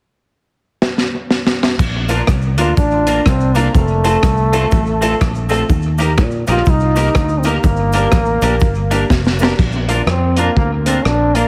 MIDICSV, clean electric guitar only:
0, 0, Header, 1, 3, 480
1, 0, Start_track
1, 0, Key_signature, -2, "major"
1, 0, Tempo, 487409
1, 1767, Time_signature, 4, 2, 24, 8
1, 11305, End_track
2, 0, Start_track
2, 0, Title_t, "Clean electric guitar"
2, 0, Program_c, 0, 27
2, 2061, Note_on_c, 0, 58, 75
2, 2070, Note_on_c, 0, 62, 93
2, 2071, Note_on_c, 0, 65, 86
2, 2073, Note_on_c, 0, 70, 95
2, 2176, Note_off_c, 0, 58, 0
2, 2180, Note_off_c, 0, 62, 0
2, 2181, Note_off_c, 0, 65, 0
2, 2182, Note_off_c, 0, 70, 0
2, 2539, Note_on_c, 0, 58, 83
2, 2541, Note_on_c, 0, 62, 85
2, 2550, Note_on_c, 0, 70, 80
2, 2553, Note_on_c, 0, 65, 77
2, 2655, Note_off_c, 0, 58, 0
2, 2656, Note_off_c, 0, 62, 0
2, 2660, Note_off_c, 0, 70, 0
2, 2662, Note_off_c, 0, 65, 0
2, 3025, Note_on_c, 0, 58, 79
2, 3030, Note_on_c, 0, 65, 95
2, 3033, Note_on_c, 0, 62, 86
2, 3042, Note_on_c, 0, 70, 81
2, 3137, Note_off_c, 0, 58, 0
2, 3140, Note_off_c, 0, 65, 0
2, 3142, Note_off_c, 0, 62, 0
2, 3146, Note_off_c, 0, 70, 0
2, 3494, Note_on_c, 0, 58, 90
2, 3502, Note_on_c, 0, 62, 98
2, 3506, Note_on_c, 0, 65, 91
2, 3508, Note_on_c, 0, 70, 99
2, 3612, Note_off_c, 0, 58, 0
2, 3616, Note_off_c, 0, 62, 0
2, 3618, Note_off_c, 0, 65, 0
2, 3619, Note_off_c, 0, 70, 0
2, 3981, Note_on_c, 0, 57, 82
2, 3982, Note_on_c, 0, 60, 88
2, 3987, Note_on_c, 0, 65, 81
2, 3993, Note_on_c, 0, 69, 86
2, 4095, Note_off_c, 0, 57, 0
2, 4096, Note_off_c, 0, 60, 0
2, 4098, Note_off_c, 0, 65, 0
2, 4102, Note_off_c, 0, 69, 0
2, 4457, Note_on_c, 0, 57, 97
2, 4458, Note_on_c, 0, 60, 98
2, 4465, Note_on_c, 0, 65, 105
2, 4472, Note_on_c, 0, 69, 98
2, 4574, Note_off_c, 0, 57, 0
2, 4574, Note_off_c, 0, 60, 0
2, 4578, Note_off_c, 0, 65, 0
2, 4581, Note_off_c, 0, 69, 0
2, 4934, Note_on_c, 0, 57, 79
2, 4941, Note_on_c, 0, 60, 93
2, 4947, Note_on_c, 0, 65, 93
2, 4952, Note_on_c, 0, 69, 95
2, 5052, Note_off_c, 0, 57, 0
2, 5055, Note_off_c, 0, 60, 0
2, 5058, Note_off_c, 0, 65, 0
2, 5061, Note_off_c, 0, 69, 0
2, 5408, Note_on_c, 0, 57, 86
2, 5412, Note_on_c, 0, 60, 87
2, 5417, Note_on_c, 0, 65, 92
2, 5425, Note_on_c, 0, 69, 90
2, 5529, Note_off_c, 0, 57, 0
2, 5531, Note_off_c, 0, 60, 0
2, 5533, Note_off_c, 0, 65, 0
2, 5537, Note_off_c, 0, 69, 0
2, 5893, Note_on_c, 0, 58, 76
2, 5899, Note_on_c, 0, 63, 72
2, 5903, Note_on_c, 0, 67, 83
2, 5908, Note_on_c, 0, 70, 89
2, 6011, Note_off_c, 0, 58, 0
2, 6014, Note_off_c, 0, 63, 0
2, 6016, Note_off_c, 0, 67, 0
2, 6018, Note_off_c, 0, 70, 0
2, 6376, Note_on_c, 0, 58, 82
2, 6382, Note_on_c, 0, 63, 96
2, 6383, Note_on_c, 0, 67, 97
2, 6392, Note_on_c, 0, 70, 89
2, 6493, Note_off_c, 0, 58, 0
2, 6495, Note_off_c, 0, 63, 0
2, 6496, Note_off_c, 0, 67, 0
2, 6500, Note_off_c, 0, 70, 0
2, 6850, Note_on_c, 0, 58, 83
2, 6858, Note_on_c, 0, 63, 93
2, 6863, Note_on_c, 0, 67, 85
2, 6867, Note_on_c, 0, 70, 97
2, 6969, Note_off_c, 0, 58, 0
2, 6973, Note_off_c, 0, 63, 0
2, 6976, Note_off_c, 0, 67, 0
2, 6978, Note_off_c, 0, 70, 0
2, 7334, Note_on_c, 0, 58, 87
2, 7339, Note_on_c, 0, 63, 82
2, 7345, Note_on_c, 0, 67, 89
2, 7348, Note_on_c, 0, 70, 103
2, 7451, Note_off_c, 0, 58, 0
2, 7453, Note_off_c, 0, 63, 0
2, 7457, Note_off_c, 0, 67, 0
2, 7458, Note_off_c, 0, 70, 0
2, 7818, Note_on_c, 0, 58, 82
2, 7825, Note_on_c, 0, 62, 75
2, 7827, Note_on_c, 0, 67, 93
2, 7835, Note_on_c, 0, 70, 92
2, 7933, Note_off_c, 0, 58, 0
2, 7937, Note_off_c, 0, 62, 0
2, 7937, Note_off_c, 0, 67, 0
2, 7942, Note_off_c, 0, 70, 0
2, 8292, Note_on_c, 0, 58, 82
2, 8299, Note_on_c, 0, 62, 82
2, 8306, Note_on_c, 0, 67, 91
2, 8310, Note_on_c, 0, 70, 92
2, 8410, Note_off_c, 0, 58, 0
2, 8414, Note_off_c, 0, 62, 0
2, 8417, Note_off_c, 0, 67, 0
2, 8419, Note_off_c, 0, 70, 0
2, 8771, Note_on_c, 0, 58, 80
2, 8773, Note_on_c, 0, 62, 74
2, 8779, Note_on_c, 0, 67, 80
2, 8784, Note_on_c, 0, 70, 81
2, 8890, Note_off_c, 0, 58, 0
2, 8891, Note_off_c, 0, 62, 0
2, 8893, Note_off_c, 0, 67, 0
2, 8896, Note_off_c, 0, 70, 0
2, 9265, Note_on_c, 0, 58, 67
2, 9272, Note_on_c, 0, 62, 82
2, 9276, Note_on_c, 0, 67, 81
2, 9280, Note_on_c, 0, 70, 85
2, 9377, Note_off_c, 0, 58, 0
2, 9380, Note_off_c, 0, 62, 0
2, 9382, Note_off_c, 0, 67, 0
2, 9384, Note_off_c, 0, 70, 0
2, 9740, Note_on_c, 0, 58, 78
2, 9744, Note_on_c, 0, 62, 80
2, 9744, Note_on_c, 0, 65, 88
2, 9753, Note_on_c, 0, 70, 79
2, 9854, Note_off_c, 0, 58, 0
2, 9856, Note_off_c, 0, 62, 0
2, 9856, Note_off_c, 0, 65, 0
2, 9861, Note_off_c, 0, 70, 0
2, 10219, Note_on_c, 0, 58, 90
2, 10225, Note_on_c, 0, 62, 89
2, 10229, Note_on_c, 0, 65, 92
2, 10234, Note_on_c, 0, 70, 99
2, 10334, Note_off_c, 0, 58, 0
2, 10337, Note_off_c, 0, 62, 0
2, 10339, Note_off_c, 0, 65, 0
2, 10341, Note_off_c, 0, 70, 0
2, 10703, Note_on_c, 0, 58, 75
2, 10705, Note_on_c, 0, 62, 91
2, 10709, Note_on_c, 0, 65, 90
2, 10715, Note_on_c, 0, 70, 82
2, 10816, Note_off_c, 0, 58, 0
2, 10817, Note_off_c, 0, 62, 0
2, 10819, Note_off_c, 0, 65, 0
2, 10822, Note_off_c, 0, 70, 0
2, 11179, Note_on_c, 0, 58, 71
2, 11186, Note_on_c, 0, 65, 70
2, 11187, Note_on_c, 0, 62, 83
2, 11194, Note_on_c, 0, 70, 75
2, 11294, Note_off_c, 0, 58, 0
2, 11298, Note_off_c, 0, 65, 0
2, 11299, Note_off_c, 0, 62, 0
2, 11302, Note_off_c, 0, 70, 0
2, 11305, End_track
3, 0, Start_track
3, 0, Title_t, "Muted clean electric guitar strokes"
3, 3215, Note_on_c, 9, 29, 49
3, 3314, Note_off_c, 9, 29, 0
3, 4648, Note_on_c, 9, 29, 45
3, 4746, Note_off_c, 9, 29, 0
3, 8965, Note_on_c, 9, 29, 31
3, 9064, Note_off_c, 9, 29, 0
3, 10879, Note_on_c, 9, 29, 41
3, 10977, Note_off_c, 9, 29, 0
3, 11305, End_track
0, 0, End_of_file